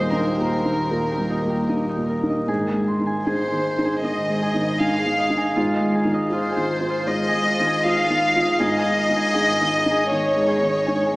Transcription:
0.00 0.87 D#2 medium
0.00 2.51 D#2 medium
0.00 0.28 A#2 soft
0.00 1.18 G3 soft
0.00 0.11 D#4 medium
0.00 0.30 G4 soft
0.00 0.10 C5 medium
0.00 1.68 D#5 soft
0.12 0.70 D#4 medium
0.12 0.54 D#4 soft
0.12 2.10 A#4 medium
0.32 0.51 G4 soft
0.39 0.81 A#2 soft
0.52 1.10 G4 soft
0.65 1.07 D#4 soft
0.71 1.29 D#4 medium
0.90 1.33 A#2 soft
0.90 2.08 A#4 soft
1.11 1.49 G4 soft
1.18 1.59 G3 soft
1.30 1.88 D#4 medium
1.44 1.86 A#2 soft
1.50 2.51 G4 soft
1.69 2.12 D#4 soft
1.69 2.28 D#5 soft
1.89 5.79 D#4 medium
1.96 2.38 A#2 soft
2.09 2.52 A#4 soft
2.23 2.49 D#4 soft
2.30 4.03 D#5 soft
2.47 8.59 G#1 medium
2.47 3.99 G#2 medium
2.47 3.25 G#4 medium
2.68 3.05 G#5 soft
2.74 3.15 G#3 soft
2.87 6.77 C6 soft
3.00 3.41 D#3 soft
3.06 4.79 G#5 soft
3.25 3.67 D#4 soft
3.25 3.83 G#4 medium
3.25 3.99 C5 medium
3.52 3.93 D#3 soft
3.78 4.19 D#4 soft
3.85 4.41 G#4 medium
4.03 4.44 D#3 soft
4.03 4.79 D#5 medium
4.03 5.17 D#5 soft
4.29 4.70 G#3 soft
4.42 4.97 G#4 medium
4.54 4.95 D#3 soft
4.80 5.21 D#4 soft
4.80 5.56 F5 medium
4.80 5.36 G#5 soft
4.99 5.93 G#4 medium
5.06 5.46 D#3 soft
5.18 5.74 D#5 soft
5.30 5.56 D#4 soft
5.37 8.77 G#5 medium
5.56 7.05 G#2 medium
5.56 6.31 F4 medium
5.75 6.13 D#5 soft
5.81 6.22 G#3 soft
5.94 6.50 G#4 soft
6.05 6.47 D#3 soft
6.14 7.84 D#5 medium
6.30 6.72 F4 soft
6.30 6.88 F4 medium
6.30 7.05 C5 medium
6.51 6.69 G#4 medium
6.57 6.98 D#3 soft
6.70 7.27 G#4 medium
6.80 7.23 F4 medium
6.90 7.46 F4 medium
7.06 8.55 G#2 medium
7.06 7.85 D#5 medium
7.28 7.65 G#4 medium
7.33 7.74 G#3 soft
7.47 8.03 F4 medium
7.60 8.00 D#3 soft
7.66 8.58 G#4 medium
7.85 8.25 F4 soft
7.85 8.40 D#5 medium
7.85 8.60 F5 medium
8.04 8.63 F4 medium
8.10 8.50 D#3 soft
8.36 8.60 F4 soft
8.41 10.08 D#5 medium
8.59 11.16 G#1 medium
8.59 10.06 G#2 medium
8.59 9.33 G#4 medium
8.59 10.10 D#5 medium
8.78 9.14 G#5 soft
8.85 9.25 G#3 soft
9.09 9.49 D#3 soft
9.16 10.85 G#5 medium
9.34 9.75 D#4 soft
9.34 9.90 G#4 medium
9.61 10.00 D#3 soft
9.86 10.26 D#4 soft
9.91 10.47 G#4 medium
10.09 10.52 D#3 soft
10.09 11.16 C#5 medium
10.09 11.16 D#5 soft
10.36 10.77 G#3 soft
10.48 11.05 G#4 medium
10.61 11.03 D#3 soft
10.87 11.16 D#4 soft
10.87 11.16 G#5 soft
11.06 11.16 G#4 medium

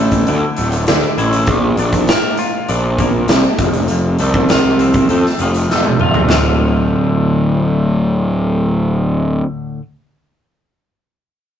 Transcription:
0.00 0.24 A1 medium
0.00 0.58 D2 medium
0.00 0.27 D3 medium
0.00 1.49 A3 medium
0.00 1.17 E4 medium
0.12 kick medium
0.12 closed hi-hat medium
0.27 0.43 D2 medium
0.27 0.87 D3 medium
0.27 closed hi-hat medium
0.57 0.87 D1 medium
0.57 1.48 A2 medium
0.57 closed hi-hat medium
0.72 closed hi-hat medium
0.87 1.02 D2 loud
0.87 1.49 D3 medium
0.87 snare medium
0.87 closed hi-hat medium
1.18 1.47 A1 medium
1.18 1.48 E4 medium
1.18 closed hi-hat medium
1.33 closed hi-hat medium
1.46 1.76 A#1 loud
1.46 2.99 A#2 medium
1.46 kick loud
1.46 closed hi-hat medium
1.77 2.07 A#1 medium
1.77 2.68 D4 medium
1.77 closed hi-hat medium
1.93 kick medium
1.93 closed hi-hat medium
2.08 3.59 A#4 medium
2.08 snare loud
2.08 closed hi-hat medium
2.37 4.50 F4 medium
2.37 closed hi-hat medium
2.68 3.26 A#1 loud
2.68 3.29 D4 medium
2.68 closed hi-hat medium
2.99 3.60 A#3 medium
2.99 kick medium
2.99 closed hi-hat medium
3.28 3.43 C2 loud
3.28 3.60 D4 medium
3.28 snare medium
3.28 closed hi-hat medium
3.59 4.16 F1 medium
3.59 3.89 F2 medium
3.59 kick medium
3.59 closed hi-hat medium
3.73 closed hi-hat medium
3.88 5.40 F2 medium
3.88 closed hi-hat medium
4.19 5.06 C2 medium
4.19 5.09 A3 medium
4.19 closed hi-hat medium
4.34 kick medium
4.49 6.00 F4 medium
4.49 snare loud
4.49 closed hi-hat medium
4.79 6.30 C4 medium
4.79 closed hi-hat medium
4.94 kick medium
4.94 closed hi-hat medium
5.09 5.24 F2 medium
5.09 5.70 A3 medium
5.09 closed hi-hat medium
5.26 snare soft
5.39 5.68 F1 medium
5.39 6.30 F3 medium
5.39 closed hi-hat medium
5.55 closed hi-hat medium
5.70 5.97 E1 medium
5.70 6.30 A3 medium
5.70 snare medium
5.85 high tom medium
5.99 6.27 D1 medium
5.99 6.30 F4 medium
5.99 mid tom medium
6.14 floor tom medium
6.29 9.41 D1 medium
6.29 9.79 D2 medium
6.29 9.80 A2 medium
6.29 9.81 D3 medium
6.29 9.82 A3 loud
6.29 snare loud
6.29 floor tom loud
6.33 9.83 F4 loud

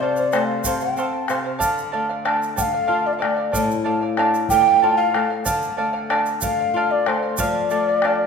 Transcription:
0.00 0.64 C3 medium
0.00 0.17 A4 medium
0.00 0.31 C5 soft
0.00 0.16 C5 medium
0.00 0.46 D5 medium
0.00 0.15 F5 medium
0.00 bombo rim soft
0.17 0.32 C5 soft
0.17 0.31 F5 medium
0.17 shaker soft
0.32 0.64 A3 medium
0.32 0.64 A4 medium
0.32 0.65 C5 medium
0.32 0.65 F5 medium
0.32 bombo rim medium
0.32 shaker soft
0.45 0.77 F5 medium
0.45 bombo rim soft
0.64 0.96 C3 medium
0.64 0.81 A4 medium
0.64 0.82 C5 medium
0.64 0.81 F5 medium
0.64 bombo rim soft
0.64 bombo low medium
0.64 shaker loud
0.78 1.24 G5 medium
0.78 bombo rim soft
0.78 shaker soft
0.82 0.97 C5 soft
0.82 0.97 F5 soft
0.97 1.28 C4 medium
0.97 1.27 A4 medium
0.97 1.29 C5 medium
0.97 1.29 F5 medium
0.97 bombo rim soft
0.97 shaker soft
1.13 bombo rim soft
1.28 1.60 C3 medium
1.28 1.45 A4 medium
1.28 1.44 C5 medium
1.28 1.43 F5 medium
1.28 bombo rim medium
1.28 shaker soft
1.44 1.61 C5 soft
1.44 1.59 F5 medium
1.59 3.49 D3 medium
1.59 1.91 A4 medium
1.59 1.92 D5 loud
1.59 1.92 F5 loud
1.59 bombo low medium
1.59 shaker medium
1.78 shaker soft
1.92 2.24 A3 soft
1.92 2.08 A4 medium
1.92 2.09 D5 medium
1.92 2.08 F5 medium
2.09 2.24 D5 soft
2.09 2.25 F5 medium
2.09 bombo rim soft
2.25 2.57 D4 soft
2.25 2.55 A4 medium
2.25 2.56 D5 medium
2.25 2.57 F5 medium
2.25 bombo rim medium
2.43 shaker soft
2.56 2.88 A3 medium
2.56 2.72 A4 medium
2.56 2.73 D5 medium
2.56 2.72 F5 medium
2.56 2.62 G5 loud
2.56 bombo rim soft
2.56 bombo low medium
2.56 shaker medium
2.61 3.07 F5 loud
2.73 2.87 D5 soft
2.73 2.87 F5 medium
2.87 3.20 F4 medium
2.87 3.17 A4 medium
2.87 3.18 D5 medium
2.87 3.20 F5 medium
3.06 3.14 D5 medium
3.13 3.21 F5 medium
3.19 3.36 A4 medium
3.19 3.36 D5 medium
3.19 3.54 D5 medium
3.19 3.35 F5 medium
3.19 bombo rim medium
3.23 3.53 A3 medium
3.36 3.52 D5 soft
3.36 3.52 F5 medium
3.36 bombo rim soft
3.52 5.42 A2 medium
3.52 3.83 A4 medium
3.52 3.84 D5 medium
3.52 3.84 F5 medium
3.52 bombo low medium
3.52 shaker medium
3.71 shaker soft
3.84 4.17 A3 medium
3.84 4.01 A4 medium
3.84 4.01 D5 medium
3.84 4.00 F5 medium
4.01 4.17 D5 medium
4.01 4.17 F5 medium
4.01 bombo rim soft
4.17 4.49 D4 soft
4.17 4.49 A4 medium
4.17 4.50 D5 medium
4.17 4.50 F5 loud
4.17 bombo rim medium
4.34 shaker soft
4.49 4.81 A3 medium
4.49 4.66 A4 medium
4.49 4.66 D5 medium
4.49 4.66 F5 medium
4.49 4.94 G5 loud
4.49 bombo rim soft
4.49 bombo low medium
4.49 shaker medium
4.67 4.82 D5 soft
4.67 4.82 F5 soft
4.82 5.13 F4 medium
4.82 5.13 A4 medium
4.82 5.13 D5 medium
4.82 5.14 F5 medium
4.97 5.42 F5 loud
5.14 5.45 A3 medium
5.14 5.30 A4 medium
5.14 5.30 D5 medium
5.14 5.29 F5 medium
5.14 bombo rim medium
5.30 5.44 D5 soft
5.30 5.45 F5 medium
5.30 bombo rim soft
5.45 7.35 D3 medium
5.45 5.76 A4 medium
5.45 5.77 D5 medium
5.45 5.77 F5 medium
5.45 bombo low medium
5.45 shaker medium
5.62 shaker soft
5.77 6.09 A3 medium
5.77 5.93 A4 medium
5.77 5.92 D5 medium
5.77 5.92 F5 medium
5.93 6.09 D5 soft
5.93 6.09 F5 medium
5.93 bombo rim soft
6.10 6.41 D4 soft
6.10 6.41 A4 medium
6.10 6.42 D5 medium
6.10 6.42 F5 medium
6.10 bombo rim medium
6.26 shaker soft
6.41 6.74 A3 medium
6.41 6.58 A4 medium
6.41 6.58 D5 medium
6.41 6.92 F5 loud
6.41 6.58 F5 medium
6.41 bombo rim soft
6.41 bombo low medium
6.41 shaker loud
6.59 6.75 D5 soft
6.59 6.74 F5 medium
6.74 7.05 F4 medium
6.74 7.05 A4 medium
6.74 7.06 D5 medium
6.74 7.07 F5 medium
6.91 7.09 D5 medium
7.06 7.38 A3 medium
7.06 7.22 A4 medium
7.06 7.42 C5 medium
7.06 7.23 D5 medium
7.06 7.21 F5 medium
7.06 bombo rim medium
7.22 7.37 D5 soft
7.22 7.38 F5 medium
7.22 bombo rim soft
7.38 8.27 F3 medium
7.38 7.69 A4 medium
7.38 7.70 D5 medium
7.38 8.27 D5 medium
7.38 7.70 F5 medium
7.38 bombo rim soft
7.38 bombo low medium
7.38 shaker loud
7.70 8.02 A3 medium
7.70 7.86 A4 medium
7.70 7.87 D5 medium
7.70 7.87 F5 medium
7.70 bombo rim soft
7.70 shaker soft
7.88 8.03 D5 soft
7.88 8.03 F5 soft
8.02 8.27 D4 soft
8.02 8.27 A4 medium
8.02 8.27 D5 medium
8.02 8.27 F5 medium
8.02 bombo rim medium

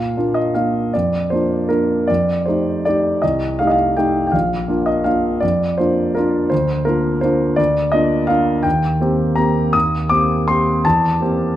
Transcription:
0.00 0.16 A#2 soft
0.00 0.36 F5 medium
0.17 0.52 A#3 soft
0.17 0.52 D4 soft
0.17 0.52 F4 soft
0.34 0.55 D#5 soft
0.54 0.90 A#3 soft
0.54 0.90 D4 soft
0.54 0.90 F4 soft
0.54 0.93 F5 soft
0.93 1.31 F2 soft
0.93 1.31 D5 medium
1.30 1.66 A#3 soft
1.30 1.67 D4 soft
1.30 1.67 F4 soft
1.30 1.69 C5 medium
1.69 2.05 A#3 soft
1.69 2.05 D4 soft
1.69 2.05 F4 soft
1.69 2.08 A#4 soft
2.07 2.46 F2 soft
2.07 2.46 D5 medium
2.46 2.82 A3 soft
2.46 2.83 D#4 soft
2.46 2.83 G4 soft
2.46 2.85 C5 soft
2.85 3.19 A3 soft
2.85 3.20 D#4 soft
2.85 3.20 G4 soft
2.85 3.22 D5 medium
3.22 3.58 C2 soft
3.22 3.58 D#5 soft
3.59 3.94 A3 soft
3.59 3.94 D#4 soft
3.59 3.94 G4 soft
3.59 3.66 F5 medium
3.67 3.73 D#5 soft
3.71 3.96 F5 medium
3.97 4.30 A3 soft
3.97 4.30 D#4 soft
3.97 4.30 G4 soft
3.97 4.25 G5 medium
4.27 4.33 G5 soft
4.32 4.68 A#1 soft
4.32 4.86 F5 medium
4.68 5.02 A#3 soft
4.68 5.02 D4 soft
4.68 5.02 F4 soft
4.86 5.05 D#5 soft
5.04 5.39 A#3 soft
5.04 5.39 D4 soft
5.04 5.39 F4 soft
5.04 5.42 F5 medium
5.40 5.77 F2 soft
5.40 5.78 D5 medium
5.78 6.12 A#3 soft
5.78 6.12 D4 soft
5.78 6.12 F4 soft
5.78 6.15 C5 medium
6.15 6.48 A#3 soft
6.15 6.49 D4 soft
6.15 6.49 F4 soft
6.15 6.51 A#4 medium
6.50 6.84 D2 soft
6.50 6.85 C5 medium
6.85 7.19 A#3 soft
6.85 7.19 D4 soft
6.85 7.20 F4 soft
6.85 7.22 A#4 medium
7.21 7.55 A#3 soft
7.21 7.56 D4 soft
7.21 7.56 F4 soft
7.21 7.58 C5 medium
7.56 7.92 D2 soft
7.56 7.93 D5 medium
7.92 8.26 A#3 soft
7.92 8.27 D4 soft
7.92 8.27 F4 soft
7.92 8.29 D#5 medium
8.27 8.60 A#3 soft
8.27 8.60 D4 soft
8.27 8.61 F4 soft
8.27 8.63 F5 medium
8.63 8.99 D#2 soft
8.63 9.36 G5 medium
9.01 9.34 A#3 soft
9.01 9.34 C4 soft
9.01 9.34 G4 soft
9.36 9.71 A#3 soft
9.36 9.71 C4 soft
9.36 9.71 G4 soft
9.36 9.73 A#5 medium
9.73 10.09 D#2 soft
9.73 10.10 D#6 medium
10.09 10.44 A#3 soft
10.09 10.45 C4 soft
10.09 10.45 G4 soft
10.09 10.48 D6 medium
10.48 10.82 A#3 soft
10.48 10.82 C4 soft
10.48 10.82 G4 soft
10.48 10.84 C6 medium
10.85 11.20 E2 soft
10.85 11.56 A5 medium
11.21 11.54 A#3 soft
11.21 11.54 C4 soft
11.21 11.55 G4 soft

